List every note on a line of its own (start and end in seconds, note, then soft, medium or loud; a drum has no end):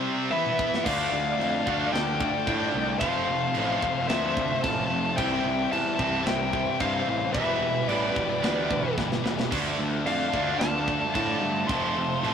0.00 0.30 C3 medium
0.00 0.31 C3 medium
0.00 0.31 G3 medium
0.00 0.31 G3 loud
0.00 0.31 C4 loud
0.00 0.31 C4 medium
0.00 0.32 G4 medium
0.00 0.31 G5 medium
0.00 0.31 C6 medium
0.31 0.85 E3 loud
0.31 0.85 E3 medium
0.31 0.85 B3 loud
0.31 0.85 B3 medium
0.31 0.86 B3 medium
0.31 0.85 E4 loud
0.31 0.86 E4 medium
0.31 0.82 B4 medium
0.31 0.84 E5 medium
0.31 0.86 E5 medium
0.31 0.86 B5 medium
0.31 high tom medium
0.46 mid tom medium
0.59 kick loud
0.74 snare medium
0.84 1.06 D2 medium
0.84 0.93 D3 medium
0.84 1.11 D3 loud
0.84 3.00 F3 medium
0.84 0.93 A3 medium
0.84 1.12 A3 loud
0.84 3.00 D4 medium
0.84 1.12 D4 loud
0.84 1.64 D4 loud
0.84 3.00 A4 medium
0.84 1.89 D5 medium
0.84 1.92 F5 loud
0.84 3.00 F5 medium
0.84 kick loud
0.84 crash loud
0.84 crash medium
0.88 1.64 F4 loud
0.93 1.00 D3 medium
0.93 1.01 A3 medium
1.01 1.09 D3 medium
1.01 1.09 A3 medium
1.09 1.32 D2 medium
1.09 1.15 D3 medium
1.09 1.16 A3 medium
1.14 1.38 D3 medium
1.14 1.23 D3 medium
1.14 1.37 A3 medium
1.14 1.24 A3 medium
1.24 1.32 D3 medium
1.24 1.32 A3 medium
1.32 1.40 D3 medium
1.32 1.39 A3 medium
1.39 1.60 F2 medium
1.39 1.47 D3 medium
1.39 1.64 D3 medium
1.39 1.47 A3 medium
1.39 1.64 A3 medium
1.39 crash medium
1.48 1.55 D3 medium
1.48 1.55 A3 medium
1.55 1.63 D3 medium
1.55 1.62 A3 medium
1.63 1.70 D3 medium
1.63 1.92 D3 medium
1.63 1.70 A3 medium
1.63 3.00 D4 medium
1.63 2.99 F4 medium
1.67 1.87 D2 medium
1.67 1.77 D3 medium
1.67 1.92 A3 loud
1.67 1.78 A3 medium
1.67 1.93 D4 loud
1.67 kick medium
1.77 1.85 D3 medium
1.77 1.86 A3 medium
1.86 1.93 D3 medium
1.86 1.93 A3 medium
1.93 2.33 D2 loud
1.93 2.18 D3 medium
1.93 2.00 D3 medium
1.93 2.01 A3 medium
1.93 2.18 A3 medium
1.93 2.98 D5 medium
1.93 2.99 G5 loud
1.93 snare loud
1.93 crash medium
2.01 2.08 D3 medium
2.01 2.07 A3 medium
2.08 2.16 D3 medium
2.08 2.15 A3 medium
2.16 2.24 D3 medium
2.16 2.23 A3 medium
2.21 2.45 D3 medium
2.21 2.45 A3 medium
2.21 2.31 A3 medium
2.21 kick medium
2.25 2.33 D3 medium
2.31 2.39 D3 medium
2.31 2.39 A3 medium
2.40 2.47 D3 medium
2.40 2.46 A3 medium
2.46 2.67 A2 medium
2.46 2.73 D3 medium
2.46 2.55 D3 medium
2.46 2.54 A3 medium
2.46 2.73 A3 medium
2.46 2.73 D4 loud
2.46 kick loud
2.46 crash medium
2.54 2.62 D3 medium
2.54 2.62 A3 medium
2.62 2.69 D3 medium
2.62 2.68 A3 medium
2.69 2.78 D3 medium
2.69 2.76 A3 medium
2.74 2.94 C2 medium
2.74 2.99 D3 medium
2.74 2.99 A3 medium
2.74 2.84 A3 medium
2.78 2.86 D3 medium
2.85 2.94 D3 medium
2.85 2.92 A3 medium
2.92 3.00 D3 medium
2.92 3.00 A3 medium
2.99 3.22 F1 medium
2.99 3.26 F2 loud
2.99 3.26 C3 loud
2.99 3.07 F3 medium
2.99 3.27 F3 loud
2.99 5.16 F3 medium
2.99 3.09 A3 medium
2.99 7.31 C4 medium
2.99 3.82 C4 loud
2.99 3.80 F4 medium
2.99 5.17 A4 medium
2.99 5.16 C5 medium
2.99 4.06 C5 medium
2.99 4.08 F5 loud
2.99 kick loud
2.99 crash medium
3.08 3.16 F3 soft
3.08 3.16 A3 medium
3.17 3.24 F3 medium
3.17 3.24 A3 medium
3.24 3.52 F2 medium
3.24 3.52 C3 medium
3.24 3.31 F3 soft
3.24 3.32 A3 medium
3.29 3.49 F1 medium
3.29 3.39 F3 medium
3.29 3.40 A3 medium
3.39 3.47 F3 soft
3.39 3.47 A3 medium
3.47 3.54 F3 medium
3.47 3.55 A3 medium
3.54 3.77 A1 loud
3.54 3.80 F2 medium
3.54 3.81 C3 loud
3.54 3.61 F3 medium
3.54 3.81 F3 loud
3.54 3.63 A3 medium
3.54 crash medium
3.62 3.69 F3 medium
3.62 3.71 A3 medium
3.70 3.77 F3 medium
3.70 3.78 A3 medium
3.78 3.85 F3 medium
3.78 3.85 A3 medium
3.78 5.16 F4 medium
3.82 4.03 F1 medium
3.82 4.08 F2 medium
3.82 4.07 C3 medium
3.82 3.93 F3 medium
3.82 3.94 A3 medium
3.82 5.17 C4 medium
3.82 kick medium
3.93 4.01 F3 medium
3.93 4.02 A3 medium
4.01 4.08 F3 medium
4.01 4.09 A3 medium
4.08 4.52 D2 loud
4.08 4.35 F2 medium
4.08 4.36 C3 loud
4.08 4.16 F3 medium
4.08 4.36 F3 medium
4.08 4.18 A3 medium
4.08 4.61 C5 medium
4.08 4.60 E5 medium
4.08 snare loud
4.08 crash medium
4.17 4.24 F3 medium
4.17 4.25 A3 medium
4.24 4.32 F3 medium
4.24 4.32 A3 medium
4.32 4.40 F3 medium
4.32 4.40 A3 medium
4.37 4.62 F2 medium
4.37 4.62 C3 medium
4.37 4.48 F3 medium
4.37 4.48 A3 medium
4.37 kick medium
4.48 4.55 F3 medium
4.48 4.55 A3 medium
4.56 4.63 F3 medium
4.56 4.62 A3 medium
4.62 4.84 A1 loud
4.62 4.88 F2 medium
4.62 4.88 C3 medium
4.62 4.71 F3 soft
4.62 4.70 A3 medium
4.62 5.15 F5 loud
4.62 5.17 A5 loud
4.62 kick loud
4.62 crash medium
4.72 4.79 F3 medium
4.72 4.78 A3 medium
4.79 4.86 F3 medium
4.79 4.86 A3 medium
4.86 5.15 F2 medium
4.86 4.93 F3 medium
4.86 4.93 A3 medium
4.91 5.11 F1 medium
4.91 5.16 C3 medium
4.91 5.01 F3 soft
4.91 5.01 A3 medium
5.02 5.09 F3 medium
5.02 5.10 A3 medium
5.10 5.17 F3 soft
5.10 5.18 A3 medium
5.17 5.38 C2 loud
5.17 5.24 C3 medium
5.17 5.43 C3 loud
5.17 5.25 E3 loud
5.17 9.49 E3 medium
5.17 5.43 G3 loud
5.17 5.99 G3 loud
5.17 5.44 C4 loud
5.17 5.97 C4 loud
5.17 7.32 G4 medium
5.17 7.34 C5 medium
5.17 5.69 E5 medium
5.17 5.68 G5 loud
5.17 kick loud
5.17 crash medium
5.21 5.32 C3 medium
5.21 5.97 E4 loud
5.25 5.33 E3 medium
5.33 5.40 C3 medium
5.33 5.41 E3 medium
5.41 5.65 C2 medium
5.41 5.48 C3 medium
5.41 5.49 E3 medium
5.45 5.70 C3 medium
5.45 5.55 C3 medium
5.45 5.56 E3 medium
5.45 5.70 G3 medium
5.55 5.63 C3 medium
5.55 5.63 E3 medium
5.63 5.70 C3 medium
5.63 5.71 E3 medium
5.71 5.92 E2 medium
5.71 5.79 C3 medium
5.71 5.96 C3 medium
5.71 5.79 E3 medium
5.71 5.97 G3 medium
5.71 6.24 E5 medium
5.71 6.23 A5 loud
5.71 crash medium
5.79 5.87 C3 medium
5.79 5.86 E3 medium
5.87 5.93 C3 medium
5.87 5.94 E3 medium
5.94 6.01 C3 medium
5.94 6.02 E3 medium
5.98 6.20 C2 loud
5.98 6.24 C3 medium
5.98 6.24 G3 medium
5.98 7.34 G3 medium
5.98 7.33 C4 medium
5.98 6.25 C4 loud
5.98 7.33 E4 medium
5.98 kick medium
6.02 6.10 C3 medium
6.02 6.09 E3 medium
6.10 6.17 C3 medium
6.10 6.17 E3 medium
6.18 6.26 C3 medium
6.18 6.25 E3 medium
6.25 6.66 C2 medium
6.25 6.51 C3 medium
6.25 6.33 C3 medium
6.25 6.32 E3 medium
6.25 6.51 G3 medium
6.25 6.78 E5 medium
6.25 6.77 G5 loud
6.25 snare loud
6.25 crash medium
6.33 6.41 C3 medium
6.33 6.41 E3 medium
6.41 6.48 C3 medium
6.41 6.49 E3 medium
6.48 6.56 C3 medium
6.48 6.56 E3 medium
6.53 6.78 C3 medium
6.53 6.64 E3 medium
6.53 6.78 G3 medium
6.53 kick medium
6.57 6.64 C3 medium
6.64 6.72 C3 medium
6.64 6.72 E3 medium
6.72 6.79 C3 medium
6.72 6.79 E3 medium
6.79 7.01 G2 loud
6.79 6.87 C3 medium
6.79 7.06 C3 medium
6.79 6.87 E3 medium
6.79 7.06 G3 loud
6.79 7.07 C4 loud
6.79 7.31 C5 medium
6.79 7.31 F5 loud
6.79 kick medium
6.79 crash medium
6.87 6.95 C3 medium
6.87 6.95 E3 medium
6.95 7.03 C3 medium
6.95 7.02 E3 medium
7.02 7.11 C3 medium
7.02 7.10 E3 medium
7.07 7.28 A1 medium
7.07 7.32 C3 medium
7.07 7.18 E3 medium
7.07 7.32 G3 medium
7.12 7.19 C3 medium
7.18 7.27 C3 medium
7.18 7.25 E3 medium
7.26 7.35 C3 medium
7.26 7.33 E3 medium
7.33 7.55 E1 medium
7.33 7.60 E2 loud
7.33 7.61 B2 loud
7.33 7.42 E3 medium
7.33 7.62 E3 loud
7.33 7.43 G3 medium
7.33 9.50 B3 medium
7.33 8.15 B3 loud
7.33 9.49 G4 medium
7.33 9.49 B4 medium
7.33 7.86 B4 medium
7.33 7.89 E5 loud
7.33 kick loud
7.33 crash medium
7.37 8.14 E4 loud
7.42 7.50 E3 soft
7.42 7.50 G3 medium
7.50 7.57 E3 medium
7.50 7.58 G3 medium
7.57 7.81 E1 medium
7.57 7.65 E3 medium
7.57 7.66 G3 medium
7.62 7.86 E2 medium
7.62 7.87 B2 medium
7.62 7.73 E3 medium
7.67 7.73 G3 medium
7.73 7.81 E3 medium
7.73 7.81 G3 medium
7.81 7.89 E3 medium
7.81 7.90 G3 medium
7.88 8.09 A1 medium
7.88 8.14 E2 loud
7.88 8.14 B2 medium
7.88 7.97 E3 medium
7.88 8.15 E3 medium
7.88 7.97 G3 medium
7.88 8.94 B4 medium
7.88 8.94 D5 medium
7.88 crash medium
7.97 8.04 E3 medium
7.97 8.05 G3 medium
8.05 8.12 E3 medium
8.05 8.12 G3 medium
8.13 8.37 E1 loud
8.13 8.40 E2 medium
8.13 8.40 B2 medium
8.13 8.20 E3 medium
8.13 8.20 G3 medium
8.13 9.51 B3 medium
8.13 9.50 E4 medium
8.13 kick medium
8.21 8.27 E3 medium
8.21 8.28 G3 medium
8.28 8.35 E3 medium
8.28 8.36 G3 medium
8.36 8.42 E3 medium
8.36 8.44 G3 medium
8.42 8.84 D2 loud
8.42 8.69 E2 medium
8.42 8.69 B2 loud
8.42 8.50 E3 medium
8.42 8.70 E3 medium
8.42 8.52 G3 medium
8.42 snare loud
8.42 crash medium
8.51 8.58 E3 medium
8.51 8.59 G3 medium
8.58 8.66 E3 medium
8.58 8.67 G3 medium
8.67 8.95 E2 medium
8.67 8.95 B2 medium
8.67 8.74 E3 medium
8.67 8.75 G3 medium
8.67 kick medium
8.75 8.82 E3 medium
8.75 8.82 G3 medium
8.83 8.90 E3 medium
8.83 8.90 G3 medium
8.90 8.97 E3 medium
8.90 8.98 G3 medium
8.97 9.18 G1 loud
8.97 9.22 E2 medium
8.97 9.22 B2 medium
8.97 9.04 E3 medium
8.97 9.06 G3 medium
8.97 kick medium
8.97 snare medium
9.04 9.12 E3 medium
9.04 9.13 G3 medium
9.12 9.20 E3 medium
9.12 9.21 G3 medium
9.12 snare medium
9.21 9.45 E1 medium
9.21 9.49 E2 medium
9.21 9.49 B2 medium
9.21 9.28 E3 medium
9.21 9.29 G3 medium
9.26 9.36 E3 medium
9.26 9.37 G3 medium
9.26 snare loud
9.36 9.44 E3 medium
9.36 9.45 G3 medium
9.36 snare loud
9.44 9.52 E3 medium
9.44 9.52 G3 medium
9.51 9.72 D2 loud
9.51 9.77 D3 medium
9.51 9.59 D3 medium
9.51 12.34 F3 medium
9.51 9.78 A3 medium
9.51 9.60 A3 medium
9.51 9.78 D4 loud
9.51 10.32 D4 loud
9.51 11.69 D4 medium
9.51 10.31 F4 loud
9.51 11.68 D5 medium
9.51 kick loud
9.51 crash loud
9.51 crash medium
9.55 12.34 A4 medium
9.59 9.67 D3 medium
9.59 9.67 A3 medium
9.67 9.75 D3 medium
9.67 9.75 A3 medium
9.75 9.83 D3 medium
9.75 10.04 D3 medium
9.75 9.83 A3 medium
9.79 10.00 D2 medium
9.79 10.04 A3 medium
9.83 9.91 D3 medium
9.83 9.91 A3 medium
9.91 9.98 D3 medium
9.91 9.98 A3 medium
9.98 10.06 D3 medium
9.98 10.06 A3 medium
10.05 10.26 F2 medium
10.05 10.13 D3 medium
10.05 10.31 D3 medium
10.05 10.31 A3 medium
10.05 10.14 A3 medium
10.05 10.56 D5 medium
10.05 10.62 F5 medium
10.05 crash medium
10.13 10.20 D3 medium
10.13 10.20 A3 medium
10.21 10.29 D3 medium
10.21 10.29 A3 medium
10.30 10.38 D3 medium
10.30 10.58 D3 medium
10.30 10.37 A3 medium
10.30 10.59 A3 loud
10.30 11.68 D4 medium
10.30 11.67 F4 medium
10.30 kick medium
10.34 10.54 D2 medium
10.34 10.45 A3 medium
10.34 10.59 D4 loud
10.38 10.45 D3 medium
10.45 10.53 D3 medium
10.45 10.53 A3 medium
10.53 10.60 D3 medium
10.53 10.60 A3 medium
10.59 11.00 D2 loud
10.59 10.85 D3 medium
10.59 10.68 D3 medium
10.59 10.68 A3 medium
10.59 10.86 A3 loud
10.59 11.11 F5 medium
10.59 11.13 A5 loud
10.59 snare loud
10.59 crash medium
10.69 10.75 D3 medium
10.69 10.75 A3 medium
10.76 10.83 D3 medium
10.76 10.83 A3 medium
10.83 10.92 D3 medium
10.83 10.90 A3 medium
10.88 11.12 D3 medium
10.88 11.12 A3 medium
10.88 10.98 A3 medium
10.88 kick medium
10.92 10.99 D3 medium
10.98 11.07 D3 medium
10.98 11.06 A3 medium
11.07 11.14 D3 medium
11.07 11.14 A3 medium
11.14 11.36 A2 medium
11.14 11.40 D3 medium
11.14 11.22 D3 medium
11.14 11.21 A3 medium
11.14 11.41 A3 medium
11.14 11.41 D4 medium
11.14 11.65 F5 medium
11.14 11.71 A5 loud
11.14 kick medium
11.14 crash medium
11.22 11.30 D3 medium
11.22 11.29 A3 medium
11.29 11.37 D3 medium
11.29 11.37 A3 medium
11.37 11.62 G2 loud
11.37 11.45 D3 medium
11.37 11.45 A3 medium
11.42 11.67 D3 medium
11.42 11.53 D3 medium
11.42 11.67 A3 medium
11.42 11.53 A3 medium
11.53 11.61 D3 medium
11.53 11.60 A3 medium
11.60 11.68 D3 medium
11.60 11.68 A3 medium
11.67 11.90 F1 loud
11.67 11.94 F2 medium
11.67 11.95 C3 loud
11.67 11.76 F3 medium
11.67 11.95 F3 medium
11.67 11.76 A3 medium
11.67 12.34 C4 medium
11.67 12.34 C4 loud
11.67 12.34 F4 loud
11.67 12.34 C5 medium
11.67 12.34 A5 medium
11.67 12.34 C6 loud
11.67 kick loud
11.67 crash medium
11.77 11.84 F3 medium
11.77 11.84 A3 medium
11.84 11.91 F3 medium
11.84 11.91 A3 medium
11.91 11.99 F3 medium
11.91 12.00 A3 medium
11.97 12.17 F1 medium
11.97 12.21 F2 medium
11.97 12.22 C3 medium
11.97 12.06 F3 medium
12.01 12.08 A3 medium
12.07 12.14 F3 medium
12.07 12.15 A3 medium
12.14 12.22 F3 medium
12.14 12.23 A3 medium
12.23 12.34 A1 medium
12.23 12.34 F2 medium
12.23 12.34 C3 loud
12.23 12.29 F3 medium
12.23 12.34 F3 loud
12.23 12.30 A3 medium
12.23 crash medium
12.30 12.34 F3 medium
12.30 12.34 A3 medium